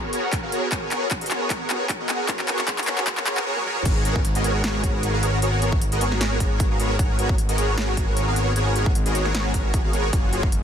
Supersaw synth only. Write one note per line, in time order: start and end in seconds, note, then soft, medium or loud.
0.00 0.11 B3 medium
0.00 0.11 F#4 medium
0.00 0.11 G#4 medium
0.00 0.11 A#4 medium
0.00 0.11 C#5 medium
0.13 0.41 B3 medium
0.13 0.40 F#4 medium
0.13 0.41 G#4 medium
0.13 0.41 A#4 medium
0.13 0.41 C#5 medium
0.43 0.51 B3 medium
0.43 0.51 F#4 medium
0.43 0.51 G#4 medium
0.43 0.51 A#4 medium
0.43 0.51 F5 loud
0.52 0.68 B3 medium
0.52 0.68 F#4 medium
0.52 0.68 G#4 medium
0.52 0.68 A#4 medium
0.52 0.68 C#5 loud
0.72 0.89 B3 medium
0.72 0.89 F#4 medium
0.72 0.89 G#4 medium
0.72 0.89 C#5 medium
0.91 1.07 B3 medium
0.91 1.07 F#4 medium
0.91 1.07 G#4 medium
0.91 1.07 A#4 medium
0.91 1.07 C#5 loud
1.21 1.29 B3 medium
1.21 1.29 F#4 medium
1.21 1.29 G#4 medium
1.21 1.29 A#4 medium
1.21 1.29 D#5 medium
1.31 1.48 B3 medium
1.31 1.48 F#4 medium
1.31 1.48 G#4 medium
1.31 1.48 A#4 medium
1.31 1.48 C#5 medium
1.50 1.68 G#4 medium
1.50 1.68 A#4 medium
1.70 1.86 B3 medium
1.70 1.86 F#4 medium
1.70 1.86 G#4 medium
1.70 1.86 A#4 medium
1.70 1.86 C#5 loud
2.00 2.08 B3 medium
2.00 2.08 F#4 medium
2.00 2.08 G#4 medium
2.00 2.08 A#4 medium
2.00 2.08 D#5 medium
2.09 2.27 B3 medium
2.09 2.27 F#4 medium
2.09 2.27 G#4 medium
2.09 2.27 A#4 medium
2.09 2.27 C#5 medium
2.29 2.46 F#4 medium
2.48 2.64 B3 medium
2.48 2.64 F#4 medium
2.48 2.64 G#4 medium
2.48 2.64 A#4 medium
2.48 2.64 C#5 loud
2.68 2.85 B3 medium
2.68 2.85 F#4 medium
2.68 2.85 G#4 medium
2.87 3.03 B3 medium
2.87 3.03 F#4 medium
2.87 3.03 G#4 medium
2.87 3.03 A#4 medium
2.87 3.03 C#5 loud
3.27 3.44 B3 medium
3.27 3.44 F#4 medium
3.27 3.44 G#4 medium
3.27 3.44 A#4 medium
3.27 3.44 C#5 loud
3.46 3.64 B3 medium
3.46 3.64 F#4 medium
3.46 3.64 G#4 medium
3.46 3.64 A#4 medium
3.46 3.64 C#5 loud
3.66 3.83 B3 medium
3.66 3.83 F#4 medium
3.66 3.83 G#4 medium
3.66 3.83 A#4 medium
3.66 3.83 C#5 loud
3.85 4.03 B3 medium
3.85 4.03 F#4 medium
3.85 4.03 G#4 medium
3.85 4.03 A#4 medium
3.85 4.03 C#5 loud
4.05 4.21 B3 loud
4.05 4.21 F#4 medium
4.05 4.21 G#4 medium
4.05 4.21 A#4 medium
4.05 4.21 C#5 loud
4.35 4.43 B3 medium
4.35 4.43 F#4 medium
4.35 4.43 G#4 medium
4.35 4.43 A#4 medium
4.35 4.43 D#5 medium
4.44 4.62 B3 medium
4.44 4.62 F#4 medium
4.44 4.62 G#4 medium
4.44 4.62 A#4 medium
4.44 4.62 C#5 medium
4.64 4.81 B3 medium
4.64 4.81 F#4 medium
4.64 4.81 G#4 medium
4.64 4.81 A#4 medium
4.64 4.81 C#5 medium
4.84 5.11 B3 medium
4.84 5.11 F#4 medium
4.84 5.11 G#4 medium
4.84 5.11 A#4 medium
4.84 5.11 C#5 medium
5.14 5.21 B3 medium
5.14 5.21 F#4 medium
5.14 5.21 G#4 medium
5.14 5.21 A#4 medium
5.14 5.21 F5 medium
5.23 5.38 B3 medium
5.23 5.38 F#4 medium
5.23 5.39 G#4 medium
5.23 5.38 A#4 medium
5.23 5.38 C#5 loud
5.42 5.60 B3 medium
5.42 5.60 F#4 medium
5.42 5.60 G#4 medium
5.42 5.60 A#4 medium
5.42 5.60 C#5 loud
5.62 5.78 B3 medium
5.62 5.78 F#4 medium
5.62 5.78 G#4 medium
5.62 5.78 A#4 medium
5.62 5.78 C#5 loud
5.92 6.00 B3 medium
5.92 6.00 F#4 medium
5.92 6.00 G#4 medium
5.92 6.00 A#4 medium
5.92 6.00 D#5 medium
6.01 6.19 B3 medium
6.01 6.19 F#4 medium
6.01 6.19 G#4 medium
6.01 6.19 A#4 medium
6.01 6.19 C#5 medium
6.21 6.38 B3 medium
6.21 6.38 F#4 medium
6.21 6.38 G#4 medium
6.21 6.38 A#4 medium
6.21 6.38 C#5 medium
6.41 6.68 B3 medium
6.41 6.68 F#4 medium
6.41 6.68 G#4 medium
6.41 6.68 A#4 medium
6.41 6.68 C#5 medium
6.71 6.78 B3 medium
6.71 6.78 F#4 medium
6.71 6.78 G#4 medium
6.71 6.78 A#4 medium
6.71 6.78 F5 medium
6.80 6.95 B3 medium
6.80 6.95 F#4 medium
6.80 6.95 G#4 medium
6.80 6.95 A#4 medium
6.80 6.95 C#5 loud
6.99 7.17 B3 medium
6.99 7.17 F#4 medium
6.99 7.17 G#4 medium
6.99 7.17 A#4 medium
6.99 7.17 C#5 loud
7.19 7.35 B3 loud
7.19 7.35 F#4 medium
7.19 7.35 G#4 medium
7.19 7.35 A#4 medium
7.19 7.35 C#5 loud
7.49 7.57 B3 medium
7.49 7.57 F#4 medium
7.49 7.57 G#4 medium
7.49 7.57 A#4 medium
7.49 7.57 D#5 medium
7.58 7.76 B3 medium
7.58 7.76 F#4 medium
7.58 7.76 G#4 medium
7.58 7.76 A#4 medium
7.58 7.76 C#5 medium
7.78 7.95 B3 medium
7.78 7.95 F#4 medium
7.78 7.95 C#5 medium
7.97 8.25 B3 medium
7.97 8.25 F#4 medium
7.97 8.25 G#4 medium
7.97 8.25 A#4 medium
7.97 8.25 C#5 medium
8.27 8.35 B3 medium
8.27 8.35 F#4 medium
8.27 8.35 G#4 medium
8.27 8.35 A#4 medium
8.27 8.35 F5 loud
8.37 8.52 B3 medium
8.37 8.52 F#4 medium
8.37 8.52 G#4 medium
8.37 8.52 A#4 medium
8.37 8.52 C#5 loud
8.56 8.74 B3 medium
8.56 8.74 F#4 medium
8.56 8.74 G#4 medium
8.56 8.74 A#4 medium
8.56 8.74 C#5 loud
8.76 8.92 B3 loud
8.76 8.92 F#4 medium
8.76 8.91 G#4 medium
8.76 8.91 A#4 medium
8.76 8.92 C#5 loud
9.06 9.14 B3 medium
9.06 9.14 F#4 medium
9.06 9.14 G#4 medium
9.06 9.14 A#4 medium
9.06 9.14 D#5 medium
9.15 9.32 B3 medium
9.15 9.32 F#4 medium
9.15 9.32 G#4 medium
9.15 9.32 A#4 medium
9.15 9.32 C#5 medium
9.35 9.52 B3 medium
9.35 9.52 F#4 medium
9.35 9.52 G#4 medium
9.35 9.52 A#4 medium
9.35 9.52 C#5 medium
9.54 9.82 B3 medium
9.54 9.82 F#4 medium
9.54 9.82 G#4 medium
9.54 9.82 A#4 medium
9.54 9.82 C#5 medium
9.84 9.92 B3 medium
9.84 9.92 F#4 medium
9.84 9.92 G#4 medium
9.84 9.92 A#4 medium
9.84 9.92 F5 medium
9.93 10.09 B3 medium
9.93 10.09 F#4 medium
9.93 10.09 G#4 medium
9.93 10.09 A#4 medium
9.93 10.09 C#5 loud
10.13 10.30 A#3 medium
10.13 10.30 F4 medium
10.13 10.30 F#4 medium
10.13 10.30 G#4 medium
10.32 10.48 A#3 loud
10.32 10.48 F4 medium
10.32 10.48 F#4 medium
10.32 10.48 G#4 medium
10.32 10.48 C#5 loud